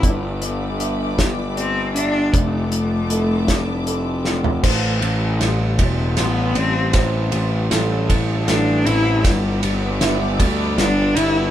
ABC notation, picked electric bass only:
X:1
M:6/8
L:1/8
Q:3/8=52
K:Am
V:1 name="Picked electric bass" clef=bass
G,,,6 | F,,,6 | A,,, A,,, A,,, E,,, A,,, A,,, | A,,, A,,, A,,,2 A,,, A,,, |
G,,, G,,, G,,, D,, G,,, G,,, |]